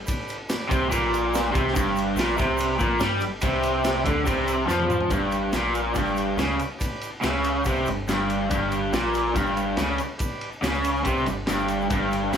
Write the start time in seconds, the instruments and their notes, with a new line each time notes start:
0.06 transistor combo organ G4 B4 D5, kick, ride, shaker
0.28 ride, shaker
0.49 transistor combo organ G4 B4 D5, snare, ride, shaker
0.69 tine electric piano C2, overdriven electric guitar C3, kick, ride, shaker
0.90 tine electric piano A#1, overdriven electric guitar A#2, transistor combo organ G4 B4 D5, kick, ride, shaker
1.14 ride, shaker
1.34 transistor combo organ G4 B4 D5, snare, ride, shaker
1.52 tine electric piano C2, overdriven electric guitar C3, kick, ride, shaker
1.68 snare
1.73 tine electric piano G1, overdriven electric guitar G2, transistor combo organ G4 B4, kick, ride, shaker
1.77 transistor combo organ D5
1.96 ride, shaker
2.16 tine electric piano A#1, overdriven electric guitar A#2, transistor combo organ G4 B4 D5, snare, ride, shaker
2.38 tine electric piano C2, overdriven electric guitar C3, kick, shaker
2.42 ride
2.57 transistor combo organ G4 B4 D5, ride, shaker
2.79 tine electric piano A#1, overdriven electric guitar A#2, kick, ride, shaker
3.00 tine electric piano G2, overdriven electric guitar G3, transistor combo organ G4 B4 D5, snare, ride, shaker
3.20 tine electric piano G1, muted overdriven electric guitar stroke, ride, shaker
3.41 tine electric piano C2, overdriven electric guitar C3, transistor combo organ G4 B4 D5, kick, ride, shaker
3.63 ride, shaker
3.82 transistor combo organ G4 B4 D5, snare, ride, shaker
4.05 tine electric piano D2, overdriven electric guitar D3, kick, ride, shaker
4.25 tine electric piano C2, overdriven electric guitar C3, transistor combo organ G4 B4 D5, kick, ride, shaker
4.48 ride, shaker
4.66 tine electric piano F2, overdriven electric guitar F3, transistor combo organ G4 B4 D5, snare, shaker
4.80 high tom
4.90 mid tom, shaker
5.01 floor tom
5.10 tine electric piano G1, overdriven electric guitar G2, transistor combo organ G4 B4 D5, kick, ride, shaker
5.32 ride, shaker
5.51 tine electric piano A#1, overdriven electric guitar A#2, transistor combo organ G4 B4 D5, snare, ride, shaker
5.75 ride, shaker
5.94 tine electric piano G1, overdriven electric guitar G2, transistor combo organ G4 B4 D5, kick, ride, shaker
6.06 shaker
6.16 ride, shaker
6.37 tine electric piano C#2, overdriven electric guitar C#3, transistor combo organ G4 B4 D5, snare, ride, shaker
6.59 ride, shaker
6.78 transistor combo organ G4 B4 D5, kick, ride, shaker
7.01 ride, shaker
7.22 tine electric piano C#2, overdriven electric guitar C#3, transistor combo organ G4 B4 E5, snare, ride, shaker
7.44 ride, shaker
7.65 tine electric piano C2, overdriven electric guitar C3, transistor combo organ G4 B4 D5, kick, ride, shaker
7.85 tine electric piano G1, overdriven electric guitar G2, ride, shaker
8.08 tine electric piano G1, overdriven electric guitar G2, transistor combo organ G4 B4 D5, snare, ride, shaker
8.30 ride, shaker
8.49 tine electric piano G1, overdriven electric guitar G2, transistor combo organ G4 B4 D5, kick, ride, shaker
8.72 ride, shaker
8.92 tine electric piano A#1, overdriven electric guitar A#2, transistor combo organ G4 B4 D5, snare, ride, shaker
9.14 ride, shaker
9.35 tine electric piano G1, overdriven electric guitar G2, transistor combo organ G4 B4 F5, kick, ride, shaker
9.46 shaker
9.57 ride, shaker
9.76 tine electric piano C#2, overdriven electric guitar C#3, transistor combo organ G4 B4 D5, snare, ride, shaker
9.98 ride, shaker
10.18 transistor combo organ G4 B4 D5, kick, ride, shaker
10.41 ride
10.52 shaker
10.62 tine electric piano C#2, overdriven electric guitar C#3, transistor combo organ G4 B4 D5, snare, ride, shaker
10.73 shaker
10.84 ride, shaker
10.96 shaker
11.04 tine electric piano C2, overdriven electric guitar C3, transistor combo organ G4 B4 D5, kick, ride, shaker
11.25 tine electric piano G1, overdriven electric guitar G2, ride, shaker
11.46 tine electric piano G1, overdriven electric guitar G2, transistor combo organ G4 B4 D5, snare, ride, shaker
11.68 ride, shaker
11.81 shaker
11.90 tine electric piano G1, overdriven electric guitar G2, transistor combo organ G4 B4 D5, kick, ride, shaker
12.12 ride, shaker
12.31 tine electric piano A#1, overdriven electric guitar A#2, transistor combo organ G4 B4 E5, snare, ride, shaker